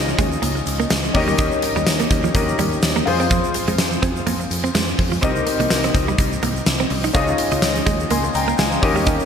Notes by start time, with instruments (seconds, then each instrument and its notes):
Already playing: picked electric bass C#2, grand piano C#4 D#4 F4 G#4 D#5 G5
0.08 shaker
0.18 picked electric bass D#2, clean electric guitar G#3, kick, closed hi-hat, shaker
0.32 shaker
0.42 picked electric bass C#2, clean electric guitar A#3, closed hi-hat, shaker
0.55 muted clean electric guitar stroke, shaker
0.66 picked electric bass C#2, closed hi-hat, shaker
0.80 clean electric guitar A#3, shaker
0.90 picked electric bass C#2, clean electric guitar G#3, snare, closed hi-hat, tambourine, shaker
1.04 shaker
1.14 picked electric bass D#2, grand piano C#4 D#4 G4 A#4 D#5, muted clean electric guitar stroke, kick, open hi-hat
1.28 clean electric guitar G3, shaker
1.38 clean electric guitar D#4, kick, closed hi-hat, shaker
1.51 shaker
1.62 muted clean electric guitar stroke, closed hi-hat, shaker
1.76 picked electric bass D#2, clean electric guitar G3, shaker
1.87 picked electric bass D#2, snare, closed hi-hat, tambourine, shaker
2.00 clean electric guitar A#3, closed hi-hat, shaker
2.11 picked electric bass D#2, muted clean electric guitar stroke, kick, closed hi-hat, shaker
2.24 clean electric guitar F3, shaker
2.34 picked electric bass D#2, grand piano C#4 D#4 G4 A#4 D#5, kick, closed hi-hat, shaker
2.49 shaker
2.58 picked electric bass D#2, clean electric guitar G3, closed hi-hat, shaker
2.72 shaker
2.82 picked electric bass D#2, snare, closed hi-hat, tambourine, shaker
2.96 clean electric guitar A#3, shaker
3.06 picked electric bass F2, grand piano F4 G#4 C5, muted clean electric guitar stroke, open hi-hat
3.20 clean electric guitar C4, shaker
3.30 clean electric guitar F3, kick, closed hi-hat, shaker
3.44 shaker
3.54 muted clean electric guitar stroke, closed hi-hat, shaker
3.68 picked electric bass F2, clean electric guitar G#3, closed hi-hat, shaker
3.78 picked electric bass F2, snare, closed hi-hat, tambourine, shaker
3.92 shaker
4.02 picked electric bass F2, clean electric guitar C4, kick, closed hi-hat, shaker
4.16 shaker
4.27 picked electric bass F2, clean electric guitar A#3, closed hi-hat, shaker
4.40 muted clean electric guitar stroke, shaker
4.51 picked electric bass F2, closed hi-hat, shaker
4.64 clean electric guitar C4, shaker
4.74 picked electric bass F2, clean electric guitar G#3, snare, closed hi-hat, tambourine, shaker
4.88 shaker
4.99 picked electric bass F2, muted clean electric guitar stroke, kick, open hi-hat
5.12 clean electric guitar F3, shaker
5.21 picked electric bass C2, grand piano C4 D#4 G4 A#4 D#5, clean electric guitar C4, kick, closed hi-hat, shaker
5.36 shaker
5.46 muted clean electric guitar stroke, closed hi-hat, shaker
5.60 picked electric bass C2, clean electric guitar A#3, closed hi-hat, shaker
5.70 picked electric bass C2, snare, closed hi-hat, tambourine, shaker
5.84 clean electric guitar C4, closed hi-hat, shaker
5.94 picked electric bass C#2, muted clean electric guitar stroke, kick, closed hi-hat, shaker
6.08 clean electric guitar G3, shaker
6.18 picked electric bass C2, kick, closed hi-hat, shaker
6.33 shaker
6.42 picked electric bass C2, clean electric guitar A#3, closed hi-hat, shaker
6.57 shaker
6.66 picked electric bass C2, snare, closed hi-hat, tambourine, shaker
6.80 clean electric guitar C4, shaker
6.90 picked electric bass C2, muted clean electric guitar stroke, open hi-hat
7.04 clean electric guitar D#4, shaker
7.13 picked electric bass C#2, grand piano C#4 D#4 F4 G#4 D#5, clean electric guitar C#4, kick, closed hi-hat, shaker
7.27 shaker
7.38 muted clean electric guitar stroke, closed hi-hat, shaker
7.51 picked electric bass C#2, clean electric guitar D#4, closed hi-hat, shaker
7.62 picked electric bass C#2, snare, closed hi-hat, tambourine, shaker
7.76 closed hi-hat, shaker
7.86 picked electric bass D#2, clean electric guitar G#3, kick, closed hi-hat, shaker
8.00 shaker
8.10 picked electric bass C#2, clean electric guitar A#3, grand piano G#5 C6, closed hi-hat, shaker
8.24 muted clean electric guitar stroke, shaker
8.34 picked electric bass C#2, grand piano G5 A#5, closed hi-hat, shaker
8.48 clean electric guitar A#3, shaker
8.58 picked electric bass C#2, clean electric guitar G#3, grand piano F5 G#5, snare, closed hi-hat, tambourine, shaker
8.72 shaker
8.81 picked electric bass D#2, grand piano C#4 D#4 G4 A#4 D#5, muted clean electric guitar stroke, kick, open hi-hat
8.96 clean electric guitar G3, shaker
9.06 clean electric guitar D#4, kick, closed hi-hat, shaker
9.20 shaker